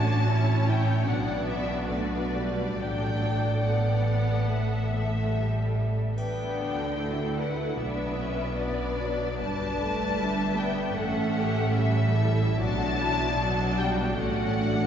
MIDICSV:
0, 0, Header, 1, 7, 480
1, 0, Start_track
1, 0, Key_signature, 2, "major"
1, 0, Tempo, 793651
1, 1149, Tempo, 891530
1, 1641, Time_signature, 4, 2, 24, 8
1, 2109, Tempo, 832178
1, 3549, Tempo, 808625
1, 5469, Tempo, 777202
1, 6909, Tempo, 843882
1, 7389, Tempo, 805369
1, 8748, End_track
2, 0, Start_track
2, 0, Title_t, "Violin section"
2, 0, Program_c, 0, 48
2, 0, Note_on_c, 0, 81, 78
2, 418, Note_on_c, 0, 79, 65
2, 419, Note_off_c, 0, 81, 0
2, 652, Note_on_c, 0, 78, 59
2, 654, Note_off_c, 0, 79, 0
2, 888, Note_on_c, 0, 76, 59
2, 896, Note_off_c, 0, 78, 0
2, 1138, Note_off_c, 0, 76, 0
2, 1143, Note_on_c, 0, 74, 52
2, 1629, Note_off_c, 0, 74, 0
2, 1634, Note_on_c, 0, 79, 66
2, 2099, Note_on_c, 0, 78, 48
2, 2105, Note_off_c, 0, 79, 0
2, 3056, Note_off_c, 0, 78, 0
2, 3540, Note_on_c, 0, 79, 56
2, 4236, Note_off_c, 0, 79, 0
2, 4261, Note_on_c, 0, 78, 44
2, 4497, Note_off_c, 0, 78, 0
2, 4499, Note_on_c, 0, 76, 50
2, 4978, Note_off_c, 0, 76, 0
2, 4981, Note_on_c, 0, 74, 56
2, 5461, Note_on_c, 0, 81, 76
2, 5471, Note_off_c, 0, 74, 0
2, 6167, Note_off_c, 0, 81, 0
2, 6187, Note_on_c, 0, 79, 56
2, 6426, Note_off_c, 0, 79, 0
2, 6427, Note_on_c, 0, 78, 63
2, 6911, Note_off_c, 0, 78, 0
2, 6919, Note_on_c, 0, 76, 66
2, 7395, Note_off_c, 0, 76, 0
2, 7406, Note_on_c, 0, 81, 96
2, 8092, Note_off_c, 0, 81, 0
2, 8109, Note_on_c, 0, 79, 67
2, 8338, Note_on_c, 0, 78, 72
2, 8343, Note_off_c, 0, 79, 0
2, 8748, Note_off_c, 0, 78, 0
2, 8748, End_track
3, 0, Start_track
3, 0, Title_t, "Violin section"
3, 0, Program_c, 1, 48
3, 0, Note_on_c, 1, 61, 46
3, 0, Note_on_c, 1, 73, 43
3, 171, Note_off_c, 1, 73, 0
3, 178, Note_on_c, 1, 73, 44
3, 641, Note_off_c, 1, 73, 0
3, 644, Note_off_c, 1, 61, 0
3, 647, Note_on_c, 1, 66, 43
3, 651, Note_on_c, 1, 74, 45
3, 1143, Note_on_c, 1, 71, 42
3, 1147, Note_off_c, 1, 74, 0
3, 1637, Note_on_c, 1, 74, 39
3, 1638, Note_off_c, 1, 66, 0
3, 1639, Note_off_c, 1, 71, 0
3, 1641, Note_on_c, 1, 69, 37
3, 2561, Note_off_c, 1, 74, 0
3, 2563, Note_off_c, 1, 69, 0
3, 2575, Note_on_c, 1, 76, 38
3, 2581, Note_on_c, 1, 69, 35
3, 3412, Note_off_c, 1, 69, 0
3, 3426, Note_off_c, 1, 76, 0
3, 3536, Note_on_c, 1, 74, 31
3, 3537, Note_on_c, 1, 71, 34
3, 3769, Note_off_c, 1, 71, 0
3, 3788, Note_on_c, 1, 69, 38
3, 4022, Note_off_c, 1, 69, 0
3, 4029, Note_on_c, 1, 69, 36
3, 4259, Note_off_c, 1, 69, 0
3, 4263, Note_on_c, 1, 71, 41
3, 4468, Note_off_c, 1, 74, 0
3, 4494, Note_off_c, 1, 71, 0
3, 4501, Note_on_c, 1, 71, 40
3, 4504, Note_on_c, 1, 74, 37
3, 4971, Note_off_c, 1, 74, 0
3, 4984, Note_on_c, 1, 74, 40
3, 5451, Note_off_c, 1, 71, 0
3, 5480, Note_on_c, 1, 71, 44
3, 5932, Note_off_c, 1, 74, 0
3, 5960, Note_on_c, 1, 76, 45
3, 6411, Note_off_c, 1, 71, 0
3, 6426, Note_off_c, 1, 76, 0
3, 6431, Note_on_c, 1, 69, 51
3, 6433, Note_on_c, 1, 76, 50
3, 6663, Note_off_c, 1, 69, 0
3, 6671, Note_on_c, 1, 67, 46
3, 6913, Note_off_c, 1, 67, 0
3, 6918, Note_on_c, 1, 69, 54
3, 7375, Note_off_c, 1, 76, 0
3, 7394, Note_off_c, 1, 69, 0
3, 7397, Note_on_c, 1, 74, 44
3, 7402, Note_on_c, 1, 66, 55
3, 7626, Note_on_c, 1, 64, 53
3, 7631, Note_off_c, 1, 66, 0
3, 7861, Note_off_c, 1, 64, 0
3, 7869, Note_on_c, 1, 66, 48
3, 8322, Note_off_c, 1, 74, 0
3, 8340, Note_off_c, 1, 66, 0
3, 8348, Note_on_c, 1, 74, 44
3, 8351, Note_on_c, 1, 66, 49
3, 8748, Note_off_c, 1, 66, 0
3, 8748, Note_off_c, 1, 74, 0
3, 8748, End_track
4, 0, Start_track
4, 0, Title_t, "Viola section"
4, 0, Program_c, 2, 48
4, 0, Note_on_c, 2, 62, 54
4, 0, Note_on_c, 2, 66, 43
4, 183, Note_off_c, 2, 62, 0
4, 185, Note_on_c, 2, 64, 51
4, 186, Note_off_c, 2, 66, 0
4, 186, Note_on_c, 2, 61, 47
4, 407, Note_off_c, 2, 64, 0
4, 414, Note_on_c, 2, 64, 52
4, 647, Note_off_c, 2, 64, 0
4, 650, Note_on_c, 2, 59, 44
4, 651, Note_on_c, 2, 62, 43
4, 654, Note_off_c, 2, 61, 0
4, 1146, Note_off_c, 2, 59, 0
4, 1148, Note_on_c, 2, 57, 43
4, 1388, Note_on_c, 2, 55, 38
4, 1389, Note_off_c, 2, 57, 0
4, 1621, Note_off_c, 2, 62, 0
4, 1638, Note_on_c, 2, 62, 40
4, 1640, Note_off_c, 2, 55, 0
4, 1640, Note_on_c, 2, 54, 36
4, 2053, Note_off_c, 2, 62, 0
4, 2063, Note_off_c, 2, 54, 0
4, 2106, Note_on_c, 2, 59, 59
4, 2796, Note_off_c, 2, 59, 0
4, 2826, Note_on_c, 2, 57, 44
4, 3064, Note_off_c, 2, 57, 0
4, 3066, Note_on_c, 2, 55, 34
4, 3549, Note_on_c, 2, 59, 36
4, 3550, Note_on_c, 2, 62, 32
4, 3551, Note_off_c, 2, 55, 0
4, 4008, Note_off_c, 2, 59, 0
4, 4008, Note_off_c, 2, 62, 0
4, 4032, Note_on_c, 2, 57, 40
4, 4033, Note_on_c, 2, 64, 37
4, 4499, Note_off_c, 2, 57, 0
4, 4500, Note_off_c, 2, 64, 0
4, 4503, Note_on_c, 2, 62, 42
4, 4505, Note_on_c, 2, 59, 38
4, 4740, Note_off_c, 2, 62, 0
4, 4742, Note_on_c, 2, 61, 47
4, 4975, Note_off_c, 2, 61, 0
4, 4976, Note_off_c, 2, 59, 0
4, 4982, Note_on_c, 2, 62, 39
4, 4983, Note_on_c, 2, 59, 39
4, 5222, Note_off_c, 2, 59, 0
4, 5226, Note_on_c, 2, 54, 38
4, 5457, Note_off_c, 2, 62, 0
4, 5464, Note_on_c, 2, 62, 48
4, 5468, Note_on_c, 2, 55, 40
4, 5471, Note_off_c, 2, 54, 0
4, 5710, Note_on_c, 2, 57, 46
4, 5712, Note_off_c, 2, 55, 0
4, 5943, Note_off_c, 2, 57, 0
4, 5943, Note_on_c, 2, 55, 50
4, 6178, Note_on_c, 2, 59, 48
4, 6183, Note_off_c, 2, 55, 0
4, 6403, Note_off_c, 2, 62, 0
4, 6421, Note_off_c, 2, 59, 0
4, 6421, Note_on_c, 2, 61, 45
4, 6422, Note_on_c, 2, 57, 54
4, 6898, Note_off_c, 2, 61, 0
4, 6907, Note_on_c, 2, 61, 47
4, 6908, Note_off_c, 2, 57, 0
4, 6910, Note_on_c, 2, 55, 45
4, 7143, Note_off_c, 2, 61, 0
4, 7145, Note_on_c, 2, 64, 50
4, 7383, Note_off_c, 2, 64, 0
4, 7384, Note_on_c, 2, 62, 52
4, 7388, Note_on_c, 2, 54, 48
4, 7390, Note_off_c, 2, 55, 0
4, 7850, Note_off_c, 2, 54, 0
4, 7854, Note_off_c, 2, 62, 0
4, 7857, Note_on_c, 2, 54, 54
4, 7861, Note_on_c, 2, 62, 52
4, 8090, Note_off_c, 2, 54, 0
4, 8095, Note_on_c, 2, 55, 60
4, 8327, Note_off_c, 2, 62, 0
4, 8336, Note_off_c, 2, 55, 0
4, 8347, Note_on_c, 2, 57, 51
4, 8351, Note_on_c, 2, 61, 49
4, 8588, Note_on_c, 2, 62, 48
4, 8590, Note_off_c, 2, 61, 0
4, 8748, Note_off_c, 2, 57, 0
4, 8748, Note_off_c, 2, 62, 0
4, 8748, End_track
5, 0, Start_track
5, 0, Title_t, "Cello section"
5, 0, Program_c, 3, 48
5, 0, Note_on_c, 3, 45, 52
5, 635, Note_off_c, 3, 45, 0
5, 651, Note_on_c, 3, 47, 47
5, 1636, Note_on_c, 3, 45, 47
5, 1640, Note_off_c, 3, 47, 0
5, 3404, Note_off_c, 3, 45, 0
5, 3553, Note_on_c, 3, 50, 39
5, 4477, Note_off_c, 3, 50, 0
5, 4496, Note_on_c, 3, 47, 42
5, 5468, Note_off_c, 3, 47, 0
5, 5472, Note_on_c, 3, 43, 44
5, 6426, Note_off_c, 3, 43, 0
5, 6429, Note_on_c, 3, 45, 57
5, 7373, Note_off_c, 3, 45, 0
5, 7394, Note_on_c, 3, 47, 59
5, 8321, Note_off_c, 3, 47, 0
5, 8337, Note_on_c, 3, 45, 60
5, 8748, Note_off_c, 3, 45, 0
5, 8748, End_track
6, 0, Start_track
6, 0, Title_t, "Double bass section"
6, 0, Program_c, 4, 48
6, 0, Note_on_c, 4, 33, 49
6, 634, Note_off_c, 4, 33, 0
6, 654, Note_on_c, 4, 35, 49
6, 1633, Note_on_c, 4, 33, 42
6, 1641, Note_off_c, 4, 35, 0
6, 3403, Note_off_c, 4, 33, 0
6, 3552, Note_on_c, 4, 38, 41
6, 4477, Note_off_c, 4, 38, 0
6, 4494, Note_on_c, 4, 35, 39
6, 5468, Note_off_c, 4, 35, 0
6, 5473, Note_on_c, 4, 31, 47
6, 6427, Note_off_c, 4, 31, 0
6, 6432, Note_on_c, 4, 33, 56
6, 7375, Note_off_c, 4, 33, 0
6, 7390, Note_on_c, 4, 35, 59
6, 8319, Note_off_c, 4, 35, 0
6, 8340, Note_on_c, 4, 33, 54
6, 8748, Note_off_c, 4, 33, 0
6, 8748, End_track
7, 0, Start_track
7, 0, Title_t, "Drums"
7, 3549, Note_on_c, 9, 81, 29
7, 3608, Note_off_c, 9, 81, 0
7, 8748, End_track
0, 0, End_of_file